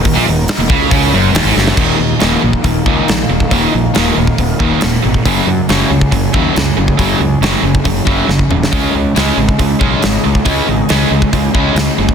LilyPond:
<<
  \new Staff \with { instrumentName = "Analog synth pad" } { \time 4/4 \key ees \minor \tempo 4 = 138 <ees' ges' bes'>1 | <ees' bes' f''>1~ | <ees' bes' f''>1 | <ges des' aes'>1~ |
<ges des' aes'>1 | <aes' ees''>1~ | <aes' ees''>1 | }
  \new Staff \with { instrumentName = "Distorted electric guitar" } { \clef bass \time 4/4 \key ees \minor ees,16 bes,16 ees,8 r16 ees,16 des8 des8 ges,8 ees,16 aes,16 ges,8 | <ees, bes, ees>8 <ees, bes,>8 <ees, bes, ees>8 <ees, bes,>8 <ees, bes,>8 <ees, bes, ees>8 <ees, bes,>8 <ees, bes,>8 | <ees, bes, ees>8 <ees, bes,>8 <ees, bes, ees>8 <ees, bes,>8 <ees, bes,>8 <ees, bes, ees>8 <ees, bes,>8 <ees, bes,>8 | <ges, des ges>8 <ges, des>8 <ges, des ges>8 <ges, des>8 <ges, des>8 <ges, des ges>8 <ges, des>8 <ges, des>8 |
<ges, des ges>8 <ges, des>8 <ges, des ges>8 <ges, des>8 <ges, des>8 <ges, des ges>8 <ges, des>8 <ges, des>8 | <des aes des'>8 <des aes>8 <des aes des'>8 <des aes>8 <des aes>8 <des aes des'>8 <des aes>8 <des aes>8 | <des aes des'>8 <des aes>8 <des aes des'>8 <des aes>8 <des aes>8 <des aes des'>8 <des aes>8 <des aes>8 | }
  \new Staff \with { instrumentName = "Overdriven electric guitar" } { \clef bass \time 4/4 \key ees \minor ees,16 bes,16 ees,8 r16 ees,16 des8 des8 ges,8 ees,16 aes,16 ges,8 | <ees, bes, ees>8 <ees, bes,>8 <ees, bes, ees>8 <ees, bes,>8 <ees, bes,>8 <ees, bes, ees>8 <ees, bes,>8 <ees, bes,>8 | <ees, bes, ees>8 <ees, bes,>8 <ees, bes, ees>8 <ees, bes,>8 <ees, bes,>8 <ees, bes, ees>8 <ees, bes,>8 <ees, bes,>8 | <ges, des ges>8 <ges, des>8 <ges, des ges>8 <ges, des>8 <ges, des>8 <ges, des ges>8 <ges, des>8 <ges, des>8 |
<ges, des ges>8 <ges, des>8 <ges, des ges>8 <ges, des>8 <ges, des>8 <ges, des ges>8 <ges, des>8 <ges, des>8 | <des aes des'>8 <des aes>8 <des aes des'>8 <des aes>8 <des aes>8 <des aes des'>8 <des aes>8 <des aes>8 | <des aes des'>8 <des aes>8 <des aes des'>8 <des aes>8 <des aes>8 <des aes des'>8 <des aes>8 <des aes>8 | }
  \new Staff \with { instrumentName = "Distorted electric guitar" } { \clef bass \time 4/4 \key ees \minor ees,16 bes,16 ees,8 r16 ees,16 des8 des8 ges,8 ees,16 aes,16 ges,8 | r1 | r1 | r1 |
r1 | r1 | r1 | }
  \new Staff \with { instrumentName = "Fingered electric bass" } { \clef bass \time 4/4 \key ees \minor ees,,16 bes,,16 ees,,8 r16 ees,,16 des,8 des,8 ges,,8 ees,,16 aes,,16 ges,,8 | ees,,8 ees,8 ees,,8 bes,,8 ees,,8 des,8 bes,,8 ees,,8 | ees,,8 bes,,8 ees,,8 ees,,8 ees,,8 ees,,8 ees,,8 aes,,8 | ges,,8 ges,8 ges,,8 des,8 ges,,8 ees,8 des,8 ges,,8 |
ges,,8 des,8 ges,,8 ges,,8 ges,,8 ges,,8 ges,,8 ees,,8 | des,8 des,8 des,8 aes,,8 des,8 ces,8 aes,,8 des,8 | des,8 aes,,8 des,8 des,8 des,8 des,8 des,8 ges,,8 | }
  \new DrumStaff \with { instrumentName = "Drums" } \drummode { \time 4/4 <hho bd>4 <hho sn>8 bd8 <hho bd>4 <hho sn>8 sn16 sn16 | <cymc bd>4 <hho sn>8. bd16 <hho bd>8 bd8 <hho sn>8. bd16 | <hho bd>4 <hho sn>8. bd16 <hho bd>8 bd8 <hho sn>8. bd16 | <hho bd>4 <hho sn>8. bd16 <hho bd>8 bd8 <hho sn>8. bd16 |
<hho bd>4 <hho sn>8. bd16 <hho bd>8 bd8 sn16 bd16 toml16 sn16 | <hho bd>4 <hho sn>8. bd16 <hho bd>8 bd8 <hho sn>8. bd16 | <hho bd>4 <hho sn>8. bd16 <hho bd>8 bd8 <hho sn>8. bd16 | }
>>